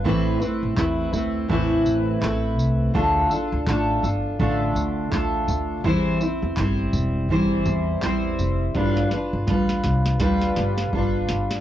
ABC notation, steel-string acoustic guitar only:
X:1
M:4/4
L:1/8
Q:"Swing 16ths" 1/4=83
K:Am
V:1 name="Steel-string acoustic guitar"
[A,,E,A,CEB] [A,CEB] [A,CEB] [A,CEB] [A,,E,A,CEB]2 [A,CEB]2 | [D,A,DFA] [DFA] [A,DFA] [DFA] [D,A,DFA]2 [A,DFA]2 | [E,G,CEc] [CEc] [G,CEc]2 [E,G,CEc]2 [G,CEc]2 | [G,DFB] [DFB] [G,DFB]2 [G,DFB]2 [G,DFB]2 |]